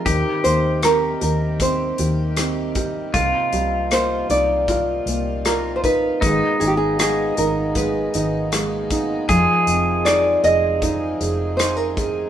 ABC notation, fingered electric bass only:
X:1
M:4/4
L:1/16
Q:1/4=78
K:Eb
V:1 name="Fingered electric bass" clef=bass
E,, z E,,4 E,,4 E,,6 | C,, z C,,4 C,,4 C,,6 | A,,, z A,,,4 A,,,4 A,,,6 | F,,, z F,,,4 F,,,4 F,,,6 |]